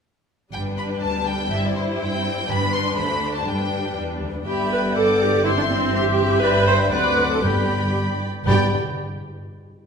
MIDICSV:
0, 0, Header, 1, 11, 480
1, 0, Start_track
1, 0, Key_signature, 1, "major"
1, 0, Tempo, 491803
1, 513, Time_signature, 2, 2, 24, 8
1, 6752, Tempo, 512821
1, 9510, End_track
2, 0, Start_track
2, 0, Title_t, "Flute"
2, 0, Program_c, 0, 73
2, 4361, Note_on_c, 0, 83, 43
2, 4841, Note_on_c, 0, 86, 41
2, 4856, Note_off_c, 0, 83, 0
2, 5298, Note_off_c, 0, 86, 0
2, 5304, Note_on_c, 0, 84, 49
2, 5778, Note_off_c, 0, 84, 0
2, 5792, Note_on_c, 0, 84, 51
2, 6260, Note_off_c, 0, 84, 0
2, 6265, Note_on_c, 0, 83, 50
2, 6759, Note_on_c, 0, 84, 49
2, 6773, Note_off_c, 0, 83, 0
2, 7222, Note_on_c, 0, 83, 41
2, 7236, Note_off_c, 0, 84, 0
2, 7956, Note_off_c, 0, 83, 0
2, 8203, Note_on_c, 0, 83, 54
2, 8470, Note_off_c, 0, 83, 0
2, 9510, End_track
3, 0, Start_track
3, 0, Title_t, "Violin section"
3, 0, Program_c, 1, 48
3, 512, Note_on_c, 1, 79, 44
3, 590, Note_off_c, 1, 79, 0
3, 756, Note_on_c, 1, 83, 44
3, 834, Note_off_c, 1, 83, 0
3, 989, Note_on_c, 1, 81, 48
3, 1226, Note_off_c, 1, 81, 0
3, 1233, Note_on_c, 1, 79, 50
3, 1472, Note_off_c, 1, 79, 0
3, 1488, Note_on_c, 1, 76, 57
3, 1599, Note_off_c, 1, 76, 0
3, 1616, Note_on_c, 1, 74, 50
3, 1712, Note_on_c, 1, 72, 49
3, 1722, Note_off_c, 1, 74, 0
3, 1790, Note_off_c, 1, 72, 0
3, 1955, Note_on_c, 1, 79, 59
3, 2416, Note_off_c, 1, 79, 0
3, 2433, Note_on_c, 1, 83, 67
3, 2665, Note_off_c, 1, 83, 0
3, 2669, Note_on_c, 1, 84, 57
3, 2898, Note_on_c, 1, 83, 58
3, 2904, Note_off_c, 1, 84, 0
3, 3255, Note_off_c, 1, 83, 0
3, 3267, Note_on_c, 1, 81, 41
3, 3385, Note_off_c, 1, 81, 0
3, 3396, Note_on_c, 1, 79, 45
3, 3881, Note_off_c, 1, 79, 0
3, 4372, Note_on_c, 1, 83, 42
3, 4815, Note_off_c, 1, 83, 0
3, 4870, Note_on_c, 1, 86, 40
3, 5324, Note_off_c, 1, 86, 0
3, 5339, Note_on_c, 1, 84, 55
3, 5795, Note_off_c, 1, 84, 0
3, 5812, Note_on_c, 1, 84, 53
3, 5890, Note_off_c, 1, 84, 0
3, 6053, Note_on_c, 1, 83, 49
3, 6749, Note_off_c, 1, 83, 0
3, 6768, Note_on_c, 1, 86, 45
3, 7226, Note_off_c, 1, 86, 0
3, 7236, Note_on_c, 1, 83, 42
3, 8008, Note_off_c, 1, 83, 0
3, 8217, Note_on_c, 1, 79, 57
3, 8477, Note_off_c, 1, 79, 0
3, 9510, End_track
4, 0, Start_track
4, 0, Title_t, "Oboe"
4, 0, Program_c, 2, 68
4, 4373, Note_on_c, 2, 79, 48
4, 5762, Note_off_c, 2, 79, 0
4, 5807, Note_on_c, 2, 79, 49
4, 6268, Note_off_c, 2, 79, 0
4, 6286, Note_on_c, 2, 79, 55
4, 6771, Note_on_c, 2, 78, 47
4, 6785, Note_off_c, 2, 79, 0
4, 7227, Note_off_c, 2, 78, 0
4, 7232, Note_on_c, 2, 79, 39
4, 7947, Note_off_c, 2, 79, 0
4, 8198, Note_on_c, 2, 79, 50
4, 8400, Note_off_c, 2, 79, 0
4, 9510, End_track
5, 0, Start_track
5, 0, Title_t, "Clarinet"
5, 0, Program_c, 3, 71
5, 4348, Note_on_c, 3, 74, 37
5, 5313, Note_on_c, 3, 76, 44
5, 5328, Note_off_c, 3, 74, 0
5, 5788, Note_off_c, 3, 76, 0
5, 5793, Note_on_c, 3, 76, 52
5, 6261, Note_off_c, 3, 76, 0
5, 6268, Note_on_c, 3, 74, 52
5, 6718, Note_off_c, 3, 74, 0
5, 6759, Note_on_c, 3, 74, 48
5, 7221, Note_off_c, 3, 74, 0
5, 7227, Note_on_c, 3, 74, 36
5, 7944, Note_off_c, 3, 74, 0
5, 8206, Note_on_c, 3, 74, 47
5, 8405, Note_off_c, 3, 74, 0
5, 9510, End_track
6, 0, Start_track
6, 0, Title_t, "Viola section"
6, 0, Program_c, 4, 48
6, 507, Note_on_c, 4, 55, 34
6, 515, Note_on_c, 4, 62, 31
6, 1433, Note_off_c, 4, 62, 0
6, 1475, Note_on_c, 4, 64, 39
6, 2379, Note_off_c, 4, 55, 0
6, 2423, Note_off_c, 4, 64, 0
6, 2427, Note_on_c, 4, 62, 43
6, 2428, Note_on_c, 4, 55, 43
6, 2893, Note_off_c, 4, 55, 0
6, 2901, Note_on_c, 4, 57, 37
6, 3384, Note_on_c, 4, 55, 30
6, 3387, Note_off_c, 4, 57, 0
6, 4135, Note_off_c, 4, 62, 0
6, 4166, Note_off_c, 4, 55, 0
6, 4368, Note_on_c, 4, 67, 58
6, 4590, Note_off_c, 4, 67, 0
6, 4612, Note_on_c, 4, 71, 63
6, 4690, Note_off_c, 4, 71, 0
6, 4848, Note_on_c, 4, 69, 63
6, 5080, Note_off_c, 4, 69, 0
6, 5092, Note_on_c, 4, 67, 62
6, 5320, Note_on_c, 4, 64, 73
6, 5325, Note_off_c, 4, 67, 0
6, 5368, Note_off_c, 4, 64, 0
6, 5451, Note_on_c, 4, 62, 61
6, 5496, Note_off_c, 4, 62, 0
6, 5571, Note_on_c, 4, 60, 66
6, 5798, Note_off_c, 4, 60, 0
6, 5800, Note_on_c, 4, 67, 76
6, 6274, Note_off_c, 4, 67, 0
6, 6279, Note_on_c, 4, 71, 75
6, 6516, Note_off_c, 4, 71, 0
6, 6527, Note_on_c, 4, 72, 70
6, 6605, Note_off_c, 4, 72, 0
6, 6766, Note_on_c, 4, 71, 65
6, 7107, Note_off_c, 4, 71, 0
6, 7120, Note_on_c, 4, 69, 48
6, 7228, Note_on_c, 4, 67, 51
6, 7231, Note_off_c, 4, 69, 0
6, 7705, Note_off_c, 4, 67, 0
6, 8202, Note_on_c, 4, 67, 63
6, 8469, Note_off_c, 4, 67, 0
6, 9510, End_track
7, 0, Start_track
7, 0, Title_t, "Violin section"
7, 0, Program_c, 5, 48
7, 514, Note_on_c, 5, 71, 33
7, 517, Note_on_c, 5, 55, 30
7, 627, Note_off_c, 5, 55, 0
7, 643, Note_on_c, 5, 59, 29
7, 755, Note_on_c, 5, 62, 29
7, 759, Note_off_c, 5, 59, 0
7, 874, Note_off_c, 5, 62, 0
7, 874, Note_on_c, 5, 67, 32
7, 990, Note_on_c, 5, 62, 30
7, 994, Note_off_c, 5, 67, 0
7, 1111, Note_off_c, 5, 62, 0
7, 1130, Note_on_c, 5, 59, 32
7, 1241, Note_off_c, 5, 59, 0
7, 1241, Note_on_c, 5, 55, 32
7, 1354, Note_on_c, 5, 59, 37
7, 1356, Note_off_c, 5, 55, 0
7, 1433, Note_off_c, 5, 71, 0
7, 1472, Note_off_c, 5, 59, 0
7, 1485, Note_on_c, 5, 72, 42
7, 1487, Note_on_c, 5, 55, 37
7, 1591, Note_off_c, 5, 55, 0
7, 1614, Note_on_c, 5, 60, 37
7, 1717, Note_on_c, 5, 64, 36
7, 1721, Note_off_c, 5, 60, 0
7, 1832, Note_off_c, 5, 64, 0
7, 1839, Note_on_c, 5, 67, 39
7, 1951, Note_on_c, 5, 64, 37
7, 1952, Note_off_c, 5, 67, 0
7, 2068, Note_off_c, 5, 64, 0
7, 2085, Note_on_c, 5, 60, 41
7, 2194, Note_off_c, 5, 60, 0
7, 2209, Note_on_c, 5, 55, 40
7, 2315, Note_off_c, 5, 55, 0
7, 2319, Note_on_c, 5, 60, 41
7, 2425, Note_on_c, 5, 55, 43
7, 2428, Note_off_c, 5, 72, 0
7, 2429, Note_off_c, 5, 60, 0
7, 2434, Note_on_c, 5, 71, 44
7, 2534, Note_off_c, 5, 55, 0
7, 2536, Note_on_c, 5, 59, 40
7, 2657, Note_off_c, 5, 59, 0
7, 2683, Note_on_c, 5, 62, 36
7, 2785, Note_on_c, 5, 67, 36
7, 2791, Note_off_c, 5, 62, 0
7, 2896, Note_off_c, 5, 71, 0
7, 2902, Note_off_c, 5, 67, 0
7, 2904, Note_on_c, 5, 57, 35
7, 2908, Note_on_c, 5, 72, 37
7, 3014, Note_off_c, 5, 57, 0
7, 3018, Note_on_c, 5, 60, 32
7, 3140, Note_off_c, 5, 60, 0
7, 3144, Note_on_c, 5, 62, 31
7, 3265, Note_off_c, 5, 62, 0
7, 3270, Note_on_c, 5, 66, 29
7, 3376, Note_on_c, 5, 71, 30
7, 3378, Note_on_c, 5, 55, 28
7, 3389, Note_off_c, 5, 66, 0
7, 3390, Note_off_c, 5, 72, 0
7, 3496, Note_off_c, 5, 55, 0
7, 3506, Note_on_c, 5, 59, 26
7, 3624, Note_on_c, 5, 62, 27
7, 3631, Note_off_c, 5, 59, 0
7, 3750, Note_off_c, 5, 62, 0
7, 3750, Note_on_c, 5, 67, 27
7, 3868, Note_on_c, 5, 62, 25
7, 3874, Note_off_c, 5, 67, 0
7, 3974, Note_on_c, 5, 59, 27
7, 3995, Note_off_c, 5, 62, 0
7, 4100, Note_on_c, 5, 55, 25
7, 4109, Note_off_c, 5, 59, 0
7, 4162, Note_off_c, 5, 71, 0
7, 4212, Note_on_c, 5, 59, 28
7, 4232, Note_off_c, 5, 55, 0
7, 4338, Note_on_c, 5, 79, 42
7, 4346, Note_on_c, 5, 76, 37
7, 4348, Note_off_c, 5, 59, 0
7, 4797, Note_off_c, 5, 79, 0
7, 4802, Note_off_c, 5, 76, 0
7, 4824, Note_on_c, 5, 78, 40
7, 4825, Note_on_c, 5, 74, 41
7, 5301, Note_off_c, 5, 78, 0
7, 5311, Note_off_c, 5, 74, 0
7, 5316, Note_on_c, 5, 76, 44
7, 5317, Note_off_c, 5, 76, 0
7, 5317, Note_on_c, 5, 76, 48
7, 5777, Note_off_c, 5, 76, 0
7, 5789, Note_on_c, 5, 76, 53
7, 6289, Note_on_c, 5, 79, 50
7, 6731, Note_off_c, 5, 76, 0
7, 6762, Note_off_c, 5, 79, 0
7, 6764, Note_on_c, 5, 74, 48
7, 6768, Note_on_c, 5, 78, 45
7, 7233, Note_off_c, 5, 74, 0
7, 7235, Note_off_c, 5, 78, 0
7, 7243, Note_on_c, 5, 79, 37
7, 7244, Note_on_c, 5, 74, 37
7, 7997, Note_off_c, 5, 74, 0
7, 8012, Note_off_c, 5, 79, 0
7, 8200, Note_on_c, 5, 71, 51
7, 8206, Note_on_c, 5, 74, 49
7, 8468, Note_off_c, 5, 71, 0
7, 8472, Note_off_c, 5, 74, 0
7, 9510, End_track
8, 0, Start_track
8, 0, Title_t, "French horn section"
8, 0, Program_c, 6, 60
8, 4347, Note_on_c, 6, 50, 46
8, 4350, Note_on_c, 6, 59, 44
8, 5273, Note_off_c, 6, 50, 0
8, 5275, Note_off_c, 6, 59, 0
8, 5314, Note_on_c, 6, 52, 51
8, 5314, Note_on_c, 6, 60, 52
8, 5778, Note_off_c, 6, 52, 0
8, 5779, Note_off_c, 6, 60, 0
8, 5790, Note_on_c, 6, 52, 52
8, 5791, Note_on_c, 6, 60, 52
8, 6259, Note_off_c, 6, 52, 0
8, 6260, Note_off_c, 6, 60, 0
8, 6279, Note_on_c, 6, 62, 55
8, 6283, Note_on_c, 6, 55, 53
8, 6724, Note_off_c, 6, 62, 0
8, 6726, Note_off_c, 6, 55, 0
8, 6758, Note_on_c, 6, 54, 47
8, 6760, Note_on_c, 6, 60, 50
8, 7230, Note_off_c, 6, 54, 0
8, 7231, Note_off_c, 6, 60, 0
8, 7236, Note_on_c, 6, 59, 40
8, 7240, Note_on_c, 6, 55, 40
8, 7963, Note_off_c, 6, 59, 0
8, 7965, Note_off_c, 6, 55, 0
8, 8203, Note_on_c, 6, 55, 55
8, 8205, Note_on_c, 6, 59, 53
8, 8403, Note_off_c, 6, 55, 0
8, 8404, Note_off_c, 6, 59, 0
8, 9510, End_track
9, 0, Start_track
9, 0, Title_t, "Cello section"
9, 0, Program_c, 7, 48
9, 506, Note_on_c, 7, 43, 34
9, 910, Note_off_c, 7, 43, 0
9, 995, Note_on_c, 7, 38, 37
9, 1393, Note_off_c, 7, 38, 0
9, 1470, Note_on_c, 7, 43, 42
9, 1867, Note_off_c, 7, 43, 0
9, 1945, Note_on_c, 7, 43, 45
9, 2341, Note_off_c, 7, 43, 0
9, 2421, Note_on_c, 7, 43, 45
9, 2819, Note_off_c, 7, 43, 0
9, 2900, Note_on_c, 7, 38, 41
9, 3304, Note_off_c, 7, 38, 0
9, 3384, Note_on_c, 7, 43, 34
9, 3794, Note_off_c, 7, 43, 0
9, 3871, Note_on_c, 7, 40, 34
9, 4101, Note_off_c, 7, 40, 0
9, 4121, Note_on_c, 7, 38, 29
9, 4361, Note_on_c, 7, 43, 43
9, 4364, Note_off_c, 7, 38, 0
9, 6231, Note_off_c, 7, 43, 0
9, 6279, Note_on_c, 7, 43, 50
9, 6748, Note_off_c, 7, 43, 0
9, 6759, Note_on_c, 7, 38, 49
9, 7221, Note_off_c, 7, 38, 0
9, 7226, Note_on_c, 7, 43, 41
9, 8004, Note_off_c, 7, 43, 0
9, 8196, Note_on_c, 7, 43, 56
9, 8466, Note_off_c, 7, 43, 0
9, 9510, End_track
10, 0, Start_track
10, 0, Title_t, "Timpani"
10, 0, Program_c, 8, 47
10, 7240, Note_on_c, 8, 43, 53
10, 7928, Note_off_c, 8, 43, 0
10, 8206, Note_on_c, 8, 43, 62
10, 8427, Note_off_c, 8, 43, 0
10, 9510, End_track
11, 0, Start_track
11, 0, Title_t, "Double bass section"
11, 0, Program_c, 10, 48
11, 512, Note_on_c, 10, 31, 36
11, 893, Note_off_c, 10, 31, 0
11, 1470, Note_on_c, 10, 31, 44
11, 1847, Note_off_c, 10, 31, 0
11, 2420, Note_on_c, 10, 31, 50
11, 2798, Note_off_c, 10, 31, 0
11, 2895, Note_on_c, 10, 38, 40
11, 3281, Note_off_c, 10, 38, 0
11, 3381, Note_on_c, 10, 31, 34
11, 3772, Note_off_c, 10, 31, 0
11, 4356, Note_on_c, 10, 31, 49
11, 6229, Note_off_c, 10, 31, 0
11, 6278, Note_on_c, 10, 31, 55
11, 6747, Note_off_c, 10, 31, 0
11, 6763, Note_on_c, 10, 38, 51
11, 7223, Note_off_c, 10, 38, 0
11, 7238, Note_on_c, 10, 31, 44
11, 8009, Note_off_c, 10, 31, 0
11, 8200, Note_on_c, 10, 31, 59
11, 8468, Note_off_c, 10, 31, 0
11, 9510, End_track
0, 0, End_of_file